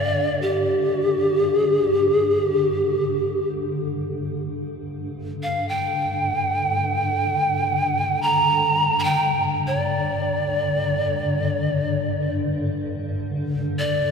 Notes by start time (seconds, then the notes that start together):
Already playing: G2 D3 D5
0.42 G4
1.51 G#4
1.81 G4
2.13 G#4
2.43 G4
4.59 G2 D3
5.43 F5
5.69 G5
8.22 A#5
8.99 A#5
9.04 G5
9.67 D5
13.79 D5